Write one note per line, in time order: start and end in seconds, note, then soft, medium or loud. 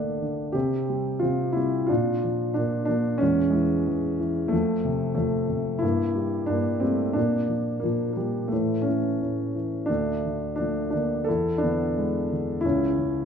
0.00 0.22 D3 medium
0.00 0.56 A3 medium
0.00 0.57 A#3 soft
0.00 0.57 D4 medium
0.22 0.54 D3 soft
0.52 1.20 C3 medium
0.52 1.18 C4 medium
0.52 1.23 G4 medium
0.89 1.55 G3 soft
1.19 1.88 C3 soft
1.19 1.54 C4 medium
1.19 1.56 F4 medium
1.53 1.89 G3 soft
1.53 1.87 C4 medium
1.53 1.89 E4 medium
1.87 2.52 D4 medium
1.87 2.57 F4 medium
1.91 2.55 A#2 medium
2.24 2.87 F3 soft
2.54 3.19 A#2 soft
2.54 2.87 A#3 medium
2.54 2.84 D4 medium
2.85 3.20 F3 soft
2.85 3.19 A#3 medium
2.85 3.17 D4 medium
3.18 3.86 E2 medium
3.18 3.49 G#3 medium
3.18 3.53 C#4 medium
3.50 4.18 E3 medium
3.50 4.54 G#3 medium
3.87 4.51 E2 medium
4.20 4.52 E3 medium
4.48 5.13 A3 medium
4.52 5.16 F2 medium
4.52 5.14 F3 medium
4.85 5.48 C3 medium
5.15 5.81 F2 medium
5.15 5.79 F3 medium
5.15 5.83 A3 medium
5.49 5.81 C3 soft
5.79 6.47 G2 medium
5.79 6.44 E4 medium
5.83 6.46 A#3 medium
6.15 6.81 G3 soft
6.46 7.14 G2 medium
6.46 6.83 D4 medium
6.51 6.81 A#3 medium
6.80 7.15 G3 soft
6.80 7.12 C4 medium
6.84 7.15 A3 medium
7.13 7.82 A#2 medium
7.13 7.84 D4 medium
7.18 7.78 A#3 medium
7.48 7.83 F3 soft
7.80 8.49 A#2 soft
7.80 8.11 A#3 medium
7.84 8.15 F3 medium
8.13 8.49 G3 soft
8.13 8.50 A#3 medium
8.17 8.50 F3 soft
8.48 8.85 A3 medium
8.52 9.20 A2 medium
8.52 8.84 E3 medium
8.82 9.91 C#4 medium
8.86 9.54 E3 soft
8.86 9.86 A3 medium
9.21 9.88 A2 soft
9.55 9.89 E3 soft
9.86 11.24 D2 medium
9.86 10.54 D4 medium
9.90 10.55 A3 medium
10.25 10.93 D3 soft
10.56 10.89 D4 medium
10.60 11.26 F3 soft
10.60 10.92 A3 medium
10.91 11.27 D3 soft
10.91 11.27 D4 medium
10.95 11.26 A#3 medium
11.24 11.60 E4 medium
11.24 11.61 A4 medium
11.29 12.61 E2 medium
11.58 12.58 D4 medium
11.62 12.30 D3 soft
11.62 12.60 B3 medium
11.97 12.62 G#3 medium
12.31 12.64 D3 soft
12.61 13.25 E4 medium
12.65 13.25 C#2 medium
12.65 13.25 C#4 medium
12.98 13.25 C#3 soft